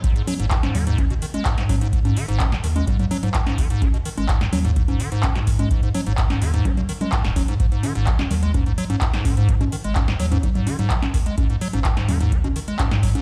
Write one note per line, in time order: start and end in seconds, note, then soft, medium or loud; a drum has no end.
0.04 0.14 G#1 loud
0.04 0.14 G#2 medium
0.04 kick loud
0.04 closed hi-hat medium
0.16 0.22 G#2 medium
0.16 closed hi-hat soft
0.27 0.34 F#3 loud
0.27 open hi-hat loud
0.27 high conga medium
0.39 0.72 G#1 loud
0.39 0.46 G#2 loud
0.39 closed hi-hat medium
0.51 0.58 G#2 medium
0.51 kick loud
0.51 clap loud
0.51 closed hi-hat medium
0.63 0.76 G#2 medium
0.63 snare medium
0.63 closed hi-hat soft
0.63 high conga medium
0.75 1.07 D#2 medium
0.75 0.85 D#3 loud
0.75 open hi-hat loud
0.75 low conga medium
0.87 1.00 G#2 loud
0.87 closed hi-hat medium
0.98 1.05 G#3 medium
0.98 kick loud
0.98 closed hi-hat medium
0.98 high conga medium
1.10 1.20 G#1 medium
1.10 1.14 B2 medium
1.10 closed hi-hat soft
1.22 1.26 D#3 medium
1.22 open hi-hat loud
1.34 1.44 G#3 medium
1.34 closed hi-hat medium
1.34 high conga medium
1.45 1.56 G#2 medium
1.45 kick loud
1.45 clap loud
1.45 closed hi-hat medium
1.58 1.64 G#2 medium
1.58 2.14 G#2 medium
1.58 snare medium
1.58 closed hi-hat soft
1.69 1.76 F#3 loud
1.69 kick medium
1.69 open hi-hat loud
1.69 high conga medium
1.81 1.88 G#2 loud
1.81 closed hi-hat medium
1.93 2.00 G#2 medium
1.93 kick loud
1.93 closed hi-hat medium
2.05 2.18 G#2 medium
2.05 closed hi-hat soft
2.05 high conga medium
2.16 2.26 D#3 loud
2.16 open hi-hat loud
2.28 2.61 G#1 loud
2.28 2.42 G#2 loud
2.28 closed hi-hat medium
2.40 2.47 G#3 medium
2.40 kick loud
2.40 clap loud
2.40 closed hi-hat medium
2.40 high conga medium
2.52 2.56 B2 medium
2.52 snare medium
2.52 closed hi-hat soft
2.64 2.84 D#2 loud
2.64 2.68 D#3 medium
2.64 open hi-hat loud
2.76 2.85 G#3 medium
2.76 closed hi-hat medium
2.76 high conga medium
2.87 2.97 G#2 medium
2.87 kick loud
2.87 closed hi-hat medium
2.87 low conga medium
2.99 3.06 G#2 medium
2.99 closed hi-hat soft
2.99 low conga medium
3.11 3.18 F#3 loud
3.11 open hi-hat loud
3.11 high conga medium
3.23 3.29 G#2 loud
3.23 closed hi-hat medium
3.23 low conga medium
3.34 3.41 G#2 medium
3.34 kick loud
3.34 clap loud
3.34 closed hi-hat medium
3.47 3.60 G#2 medium
3.47 snare medium
3.47 closed hi-hat soft
3.47 high conga medium
3.58 3.68 D#2 medium
3.58 3.68 D#3 loud
3.58 kick medium
3.58 open hi-hat loud
3.70 3.83 G#2 loud
3.70 closed hi-hat medium
3.82 3.92 G#1 loud
3.82 3.88 G#3 medium
3.82 kick loud
3.82 closed hi-hat soft
3.82 high conga medium
3.94 3.98 B2 medium
3.94 closed hi-hat soft
4.05 4.09 D#3 medium
4.05 open hi-hat loud
4.18 4.50 G#1 loud
4.18 4.27 G#3 medium
4.18 closed hi-hat medium
4.18 high conga medium
4.29 4.39 G#2 medium
4.29 kick loud
4.29 clap loud
4.29 closed hi-hat medium
4.41 4.47 G#2 medium
4.41 snare medium
4.41 closed hi-hat soft
4.53 4.85 D#2 loud
4.53 4.59 F#3 loud
4.53 open hi-hat loud
4.53 high conga medium
4.53 low conga medium
4.65 4.71 G#2 loud
4.65 closed hi-hat medium
4.76 4.83 G#2 medium
4.76 kick loud
4.76 closed hi-hat medium
4.88 4.98 G#1 medium
4.88 5.02 G#2 medium
4.88 closed hi-hat soft
4.88 high conga medium
5.00 5.10 D#3 loud
5.00 open hi-hat loud
5.12 5.25 G#2 loud
5.12 closed hi-hat soft
5.23 5.30 G#3 medium
5.23 kick loud
5.23 clap loud
5.23 closed hi-hat medium
5.23 high conga medium
5.35 5.92 G#2 loud
5.35 5.39 B2 medium
5.35 snare medium
5.35 closed hi-hat soft
5.47 5.51 D#3 medium
5.47 kick medium
5.47 open hi-hat loud
5.59 5.69 G#3 medium
5.59 closed hi-hat medium
5.59 high conga medium
5.71 5.81 G#2 medium
5.71 kick loud
5.71 closed hi-hat medium
5.83 5.89 G#2 medium
5.83 closed hi-hat soft
5.94 6.01 F#3 loud
5.94 open hi-hat loud
5.94 high conga medium
6.06 6.39 G#1 loud
6.06 6.13 G#2 loud
6.06 closed hi-hat soft
6.18 6.25 G#2 medium
6.18 kick loud
6.18 clap loud
6.18 closed hi-hat soft
6.30 6.43 G#2 medium
6.30 snare medium
6.30 closed hi-hat soft
6.30 high conga medium
6.42 6.62 D#2 loud
6.42 6.52 D#3 loud
6.42 open hi-hat loud
6.54 6.67 G#2 loud
6.54 closed hi-hat medium
6.65 6.72 G#3 medium
6.65 kick loud
6.65 closed hi-hat medium
6.65 high conga medium
6.65 low conga medium
6.77 6.81 B2 medium
6.77 closed hi-hat soft
6.77 low conga medium
6.89 6.93 D#3 medium
6.89 open hi-hat loud
7.01 7.11 G#3 medium
7.01 closed hi-hat soft
7.01 high conga medium
7.01 low conga medium
7.12 7.23 G#2 medium
7.12 kick loud
7.12 clap loud
7.12 closed hi-hat medium
7.25 7.44 D#1 loud
7.25 7.31 G#2 medium
7.25 snare medium
7.25 closed hi-hat soft
7.36 7.43 F#3 loud
7.36 kick medium
7.36 open hi-hat loud
7.36 high conga medium
7.48 7.55 G#2 loud
7.48 7.58 G#2 loud
7.48 closed hi-hat medium
7.60 7.70 G#1 loud
7.60 7.66 G#2 medium
7.60 kick loud
7.60 closed hi-hat medium
7.72 7.85 G#2 medium
7.72 closed hi-hat soft
7.83 7.93 D#3 loud
7.83 open hi-hat loud
7.83 high conga medium
7.95 8.28 G#1 loud
7.95 8.09 G#2 loud
7.95 closed hi-hat medium
8.07 8.14 G#3 medium
8.07 kick loud
8.07 clap loud
8.07 closed hi-hat soft
8.19 8.23 B2 medium
8.19 snare medium
8.19 closed hi-hat soft
8.19 high conga medium
8.31 8.63 D#2 loud
8.31 8.35 D#3 medium
8.31 open hi-hat loud
8.31 low conga medium
8.43 8.52 G#3 medium
8.43 closed hi-hat medium
8.54 8.64 G#2 medium
8.54 kick loud
8.54 closed hi-hat medium
8.54 high conga medium
8.66 8.76 G#1 medium
8.66 8.73 G#2 medium
8.66 closed hi-hat soft
8.78 8.85 F#3 loud
8.78 open hi-hat loud
8.90 8.96 G#2 loud
8.90 closed hi-hat medium
8.90 high conga medium
9.01 9.08 G#2 medium
9.01 kick loud
9.01 clap loud
9.01 closed hi-hat medium
9.13 9.27 G#2 medium
9.13 9.69 G#2 loud
9.13 snare medium
9.13 closed hi-hat soft
9.25 9.35 D#3 loud
9.25 kick medium
9.25 open hi-hat loud
9.25 high conga medium
9.37 9.50 G#2 loud
9.37 closed hi-hat medium
9.49 9.55 G#3 medium
9.49 kick loud
9.49 closed hi-hat medium
9.61 9.65 B2 medium
9.61 closed hi-hat soft
9.61 high conga medium
9.72 9.76 D#3 medium
9.72 open hi-hat loud
9.84 10.17 G#1 loud
9.84 9.94 G#3 medium
9.84 closed hi-hat medium
9.96 10.06 G#2 medium
9.96 kick loud
9.96 clap loud
9.96 closed hi-hat medium
9.96 high conga medium
10.08 10.14 G#2 medium
10.08 snare medium
10.08 closed hi-hat soft
10.20 10.40 D#2 medium
10.20 10.26 F#3 loud
10.20 open hi-hat loud
10.32 10.38 G#2 loud
10.32 closed hi-hat medium
10.32 high conga medium
10.43 10.50 G#2 medium
10.43 kick loud
10.43 closed hi-hat medium
10.43 low conga medium
10.55 10.68 G#2 medium
10.55 closed hi-hat soft
10.55 low conga medium
10.67 10.77 D#3 loud
10.67 open hi-hat loud
10.67 high conga medium
10.79 10.92 G#2 loud
10.79 closed hi-hat medium
10.79 low conga medium
10.90 10.97 G#3 medium
10.90 kick loud
10.90 clap loud
10.90 closed hi-hat medium
11.02 11.06 B2 medium
11.02 snare medium
11.02 closed hi-hat soft
11.02 high conga medium
11.14 11.24 D#2 medium
11.14 11.18 D#3 medium
11.14 kick medium
11.14 open hi-hat loud
11.26 11.36 G#3 medium
11.26 closed hi-hat medium
11.38 11.48 G#1 loud
11.38 11.48 G#2 medium
11.38 kick loud
11.38 closed hi-hat medium
11.38 high conga medium
11.50 11.56 G#2 medium
11.50 closed hi-hat soft
11.61 11.68 F#3 loud
11.61 open hi-hat loud
11.73 12.06 G#1 loud
11.73 11.80 G#2 loud
11.73 closed hi-hat medium
11.73 high conga medium
11.85 11.92 G#2 medium
11.85 kick loud
11.85 clap loud
11.85 closed hi-hat medium
11.97 12.10 G#2 medium
11.97 snare medium
11.97 closed hi-hat soft
12.09 12.41 D#2 medium
12.09 12.19 D#3 loud
12.09 open hi-hat loud
12.09 high conga medium
12.09 low conga medium
12.21 12.34 G#2 loud
12.21 closed hi-hat medium
12.32 12.39 G#3 medium
12.32 kick loud
12.32 closed hi-hat medium
12.44 12.54 G#1 medium
12.44 12.48 B2 medium
12.44 closed hi-hat soft
12.44 high conga medium
12.56 12.60 D#3 medium
12.56 open hi-hat loud
12.68 12.77 G#3 medium
12.68 closed hi-hat medium
12.79 12.89 G#2 medium
12.79 kick loud
12.79 clap loud
12.79 closed hi-hat medium
12.79 high conga medium
12.91 13.22 G#2 loud
12.91 12.98 G#2 medium
12.91 snare medium
12.91 closed hi-hat soft
13.03 13.10 F#3 loud
13.03 kick medium
13.03 open hi-hat loud
13.15 13.21 G#2 loud
13.15 closed hi-hat medium
13.15 high conga medium